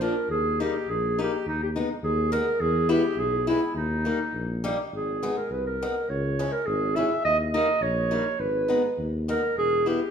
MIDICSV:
0, 0, Header, 1, 4, 480
1, 0, Start_track
1, 0, Key_signature, 5, "minor"
1, 0, Tempo, 573614
1, 253, Time_signature, 2, 2, 24, 8
1, 2648, Tempo, 581395
1, 8380, End_track
2, 0, Start_track
2, 0, Title_t, "Clarinet"
2, 0, Program_c, 0, 71
2, 16, Note_on_c, 0, 70, 74
2, 238, Note_off_c, 0, 70, 0
2, 256, Note_on_c, 0, 68, 82
2, 506, Note_on_c, 0, 67, 90
2, 518, Note_off_c, 0, 68, 0
2, 751, Note_on_c, 0, 68, 77
2, 764, Note_off_c, 0, 67, 0
2, 1005, Note_on_c, 0, 67, 87
2, 1018, Note_off_c, 0, 68, 0
2, 1232, Note_off_c, 0, 67, 0
2, 1236, Note_on_c, 0, 63, 84
2, 1342, Note_off_c, 0, 63, 0
2, 1366, Note_on_c, 0, 67, 68
2, 1415, Note_off_c, 0, 67, 0
2, 1705, Note_on_c, 0, 68, 82
2, 1924, Note_off_c, 0, 68, 0
2, 1942, Note_on_c, 0, 70, 94
2, 2184, Note_on_c, 0, 68, 97
2, 2197, Note_off_c, 0, 70, 0
2, 2429, Note_on_c, 0, 67, 96
2, 2442, Note_off_c, 0, 68, 0
2, 2670, Note_on_c, 0, 68, 89
2, 2682, Note_off_c, 0, 67, 0
2, 2903, Note_off_c, 0, 68, 0
2, 2913, Note_on_c, 0, 64, 83
2, 3122, Note_off_c, 0, 64, 0
2, 3144, Note_on_c, 0, 63, 79
2, 3836, Note_off_c, 0, 63, 0
2, 4119, Note_on_c, 0, 68, 68
2, 4473, Note_on_c, 0, 70, 64
2, 4485, Note_off_c, 0, 68, 0
2, 4592, Note_on_c, 0, 71, 72
2, 4605, Note_off_c, 0, 70, 0
2, 4710, Note_off_c, 0, 71, 0
2, 4713, Note_on_c, 0, 70, 68
2, 5068, Note_on_c, 0, 73, 79
2, 5080, Note_off_c, 0, 70, 0
2, 5419, Note_on_c, 0, 70, 77
2, 5432, Note_off_c, 0, 73, 0
2, 5537, Note_on_c, 0, 68, 80
2, 5549, Note_off_c, 0, 70, 0
2, 5777, Note_on_c, 0, 76, 92
2, 5790, Note_off_c, 0, 68, 0
2, 6010, Note_off_c, 0, 76, 0
2, 6019, Note_on_c, 0, 75, 100
2, 6125, Note_off_c, 0, 75, 0
2, 6258, Note_on_c, 0, 75, 89
2, 6491, Note_on_c, 0, 73, 88
2, 6504, Note_off_c, 0, 75, 0
2, 6968, Note_on_c, 0, 71, 77
2, 6981, Note_off_c, 0, 73, 0
2, 7469, Note_off_c, 0, 71, 0
2, 7706, Note_on_c, 0, 70, 86
2, 7921, Note_off_c, 0, 70, 0
2, 7946, Note_on_c, 0, 68, 100
2, 8188, Note_on_c, 0, 67, 83
2, 8200, Note_off_c, 0, 68, 0
2, 8380, Note_off_c, 0, 67, 0
2, 8380, End_track
3, 0, Start_track
3, 0, Title_t, "Steel-string acoustic guitar"
3, 0, Program_c, 1, 25
3, 7, Note_on_c, 1, 62, 58
3, 13, Note_on_c, 1, 58, 49
3, 16, Note_on_c, 1, 53, 42
3, 119, Note_off_c, 1, 53, 0
3, 119, Note_off_c, 1, 58, 0
3, 119, Note_off_c, 1, 62, 0
3, 503, Note_on_c, 1, 63, 61
3, 507, Note_on_c, 1, 58, 48
3, 515, Note_on_c, 1, 55, 38
3, 611, Note_off_c, 1, 58, 0
3, 612, Note_off_c, 1, 63, 0
3, 613, Note_off_c, 1, 55, 0
3, 993, Note_on_c, 1, 63, 72
3, 997, Note_on_c, 1, 58, 44
3, 1001, Note_on_c, 1, 55, 41
3, 1098, Note_off_c, 1, 55, 0
3, 1098, Note_off_c, 1, 58, 0
3, 1098, Note_off_c, 1, 63, 0
3, 1471, Note_on_c, 1, 63, 61
3, 1477, Note_on_c, 1, 59, 45
3, 1483, Note_on_c, 1, 56, 49
3, 1573, Note_off_c, 1, 63, 0
3, 1574, Note_off_c, 1, 59, 0
3, 1575, Note_off_c, 1, 56, 0
3, 1940, Note_on_c, 1, 56, 53
3, 1947, Note_on_c, 1, 59, 51
3, 1948, Note_on_c, 1, 63, 70
3, 2043, Note_off_c, 1, 56, 0
3, 2044, Note_off_c, 1, 59, 0
3, 2046, Note_off_c, 1, 63, 0
3, 2418, Note_on_c, 1, 64, 68
3, 2420, Note_on_c, 1, 59, 62
3, 2429, Note_on_c, 1, 56, 52
3, 2521, Note_off_c, 1, 59, 0
3, 2522, Note_off_c, 1, 64, 0
3, 2523, Note_off_c, 1, 56, 0
3, 2902, Note_on_c, 1, 64, 66
3, 2905, Note_on_c, 1, 59, 49
3, 2908, Note_on_c, 1, 56, 49
3, 3003, Note_off_c, 1, 56, 0
3, 3003, Note_off_c, 1, 59, 0
3, 3004, Note_off_c, 1, 64, 0
3, 3380, Note_on_c, 1, 63, 54
3, 3387, Note_on_c, 1, 58, 43
3, 3391, Note_on_c, 1, 55, 42
3, 3485, Note_off_c, 1, 55, 0
3, 3485, Note_off_c, 1, 63, 0
3, 3486, Note_off_c, 1, 58, 0
3, 3865, Note_on_c, 1, 55, 62
3, 3871, Note_on_c, 1, 58, 58
3, 3871, Note_on_c, 1, 63, 62
3, 3971, Note_off_c, 1, 55, 0
3, 3972, Note_off_c, 1, 63, 0
3, 3973, Note_off_c, 1, 58, 0
3, 4351, Note_on_c, 1, 59, 48
3, 4355, Note_on_c, 1, 56, 61
3, 4356, Note_on_c, 1, 63, 51
3, 4455, Note_off_c, 1, 59, 0
3, 4456, Note_off_c, 1, 63, 0
3, 4457, Note_off_c, 1, 56, 0
3, 4844, Note_on_c, 1, 59, 51
3, 4846, Note_on_c, 1, 56, 56
3, 4846, Note_on_c, 1, 63, 44
3, 4941, Note_off_c, 1, 63, 0
3, 4942, Note_off_c, 1, 59, 0
3, 4943, Note_off_c, 1, 56, 0
3, 5313, Note_on_c, 1, 56, 53
3, 5318, Note_on_c, 1, 61, 54
3, 5320, Note_on_c, 1, 64, 48
3, 5415, Note_off_c, 1, 56, 0
3, 5416, Note_off_c, 1, 61, 0
3, 5416, Note_off_c, 1, 64, 0
3, 5781, Note_on_c, 1, 64, 53
3, 5786, Note_on_c, 1, 61, 47
3, 5794, Note_on_c, 1, 56, 50
3, 5885, Note_off_c, 1, 64, 0
3, 5886, Note_off_c, 1, 61, 0
3, 5887, Note_off_c, 1, 56, 0
3, 6260, Note_on_c, 1, 63, 68
3, 6264, Note_on_c, 1, 58, 49
3, 6267, Note_on_c, 1, 55, 51
3, 6361, Note_off_c, 1, 55, 0
3, 6361, Note_off_c, 1, 58, 0
3, 6362, Note_off_c, 1, 63, 0
3, 6730, Note_on_c, 1, 63, 63
3, 6734, Note_on_c, 1, 58, 52
3, 6738, Note_on_c, 1, 55, 50
3, 6833, Note_off_c, 1, 55, 0
3, 6834, Note_off_c, 1, 58, 0
3, 6834, Note_off_c, 1, 63, 0
3, 7205, Note_on_c, 1, 63, 57
3, 7214, Note_on_c, 1, 59, 41
3, 7218, Note_on_c, 1, 56, 52
3, 7315, Note_off_c, 1, 56, 0
3, 7315, Note_off_c, 1, 63, 0
3, 7316, Note_off_c, 1, 59, 0
3, 7700, Note_on_c, 1, 59, 48
3, 7704, Note_on_c, 1, 56, 50
3, 7704, Note_on_c, 1, 63, 53
3, 7803, Note_off_c, 1, 63, 0
3, 7804, Note_off_c, 1, 59, 0
3, 7805, Note_off_c, 1, 56, 0
3, 8176, Note_on_c, 1, 64, 48
3, 8180, Note_on_c, 1, 59, 45
3, 8186, Note_on_c, 1, 56, 50
3, 8282, Note_off_c, 1, 59, 0
3, 8283, Note_off_c, 1, 56, 0
3, 8283, Note_off_c, 1, 64, 0
3, 8380, End_track
4, 0, Start_track
4, 0, Title_t, "Tuba"
4, 0, Program_c, 2, 58
4, 240, Note_on_c, 2, 39, 68
4, 562, Note_off_c, 2, 39, 0
4, 736, Note_on_c, 2, 34, 70
4, 1051, Note_off_c, 2, 34, 0
4, 1218, Note_on_c, 2, 39, 64
4, 1527, Note_off_c, 2, 39, 0
4, 1698, Note_on_c, 2, 39, 86
4, 2004, Note_off_c, 2, 39, 0
4, 2173, Note_on_c, 2, 40, 88
4, 2483, Note_off_c, 2, 40, 0
4, 2640, Note_on_c, 2, 35, 74
4, 2954, Note_off_c, 2, 35, 0
4, 3128, Note_on_c, 2, 39, 78
4, 3443, Note_off_c, 2, 39, 0
4, 3610, Note_on_c, 2, 34, 73
4, 3927, Note_off_c, 2, 34, 0
4, 4099, Note_on_c, 2, 32, 62
4, 4413, Note_off_c, 2, 32, 0
4, 4576, Note_on_c, 2, 36, 64
4, 4891, Note_off_c, 2, 36, 0
4, 5066, Note_on_c, 2, 37, 80
4, 5373, Note_off_c, 2, 37, 0
4, 5542, Note_on_c, 2, 32, 81
4, 5848, Note_off_c, 2, 32, 0
4, 6018, Note_on_c, 2, 39, 74
4, 6323, Note_off_c, 2, 39, 0
4, 6479, Note_on_c, 2, 34, 81
4, 6790, Note_off_c, 2, 34, 0
4, 6958, Note_on_c, 2, 32, 76
4, 7273, Note_off_c, 2, 32, 0
4, 7449, Note_on_c, 2, 39, 78
4, 7763, Note_off_c, 2, 39, 0
4, 7927, Note_on_c, 2, 28, 63
4, 8240, Note_off_c, 2, 28, 0
4, 8380, End_track
0, 0, End_of_file